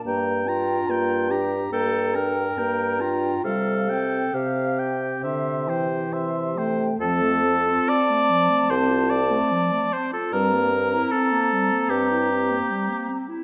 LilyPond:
<<
  \new Staff \with { instrumentName = "Flute" } { \time 4/4 \key f \major \tempo 4 = 72 bes''8 g''8 bes''8 g''8 bes''8 g''8 bes''8 g''8 | f''8 g''8 f''8 g''8 c'''8 g''8 c'''8 g''8 | a''1 | bes''2.~ bes''8 r8 | }
  \new Staff \with { instrumentName = "Oboe" } { \time 4/4 \key f \major g''8 bes''8 g''8 bes''8 g''8 bes''8 g''8 bes''8 | f''8 g''8 f''8 g''8 e''8 c''8 e''8 c''8 | a'4 d''4 c''8 d''4 c''16 a'16 | bes'4 a'4 g'4.~ g'16 r16 | }
  \new Staff \with { instrumentName = "Clarinet" } { \time 4/4 \key f \major r8 f'4 g'8 a'8 bes'4 f'8 | a'4 g'2~ g'8 r8 | f16 a16 c'16 f'16 c'16 a16 f16 a16 c'16 f'16 c'16 a16 f16 a16 c'16 f'16 | g16 bes16 c'16 e'16 c'16 bes16 g16 bes16 c'16 e'16 c'16 bes16 g16 bes16 c'16 e'16 | }
  \new Staff \with { instrumentName = "French horn" } { \time 4/4 \key f \major bes8 d'8 bes8 d'8 bes8 d'8 bes8 d'8 | g8 c'8 c4 d8 e4 a8 | c'1 | c'2.~ c'8 r8 | }
  \new Staff \with { instrumentName = "Bassoon" } { \clef bass \time 4/4 \key f \major g,4 g,4 g,4 g,4 | c4 c4 c4 c4 | f,4 r4 c,4 r4 | g,4 r4 g,4 r4 | }
>>